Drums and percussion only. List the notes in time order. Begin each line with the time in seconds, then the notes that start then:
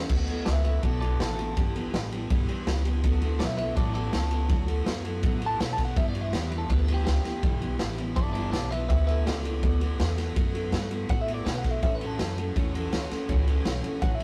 0.09 kick, crash
0.28 ride
0.46 snare, ride
0.65 ride
0.83 kick, ride
1.02 ride
1.20 snare, ride
1.39 ride
1.57 kick, ride
1.76 ride
1.94 snare, ride
2.12 ride
2.30 kick, ride
2.49 ride
2.67 snare, ride
2.85 ride
3.04 kick, ride
3.22 ride
3.40 snare, ride
3.58 ride
3.77 kick, ride
3.95 ride
4.13 snare, ride
4.31 ride
4.49 kick, ride
4.68 ride
4.86 snare, ride
5.05 ride
5.23 kick, ride
5.42 ride
5.60 snare, ride
5.78 kick, snare, ride
5.97 kick, ride
6.15 ride
6.33 snare, ride
6.52 ride
6.70 kick, ride
6.88 ride
7.07 snare, ride
7.25 snare, ride
7.43 kick, ride
7.62 ride
7.79 snare, ride
7.98 ride
8.16 kick, ride
8.35 ride
8.53 snare, ride
8.72 ride
8.90 kick, ride
9.08 ride
9.27 snare, ride
9.45 ride
9.63 kick, ride
9.81 ride
10.00 snare, ride
10.18 snare, ride
10.36 kick, ride
10.55 ride
10.72 snare, ride
10.91 ride
11.09 kick, ride
11.28 ride
11.46 snare, ride
11.64 kick, snare, ride
11.83 kick, ride
12.01 ride
12.19 snare, ride
12.38 ride
12.56 kick, ride
12.75 ride
12.93 snare, ride
13.11 snare, ride
13.29 kick, ride
13.48 ride
13.65 snare, ride
13.84 ride
14.02 kick, ride
14.20 ride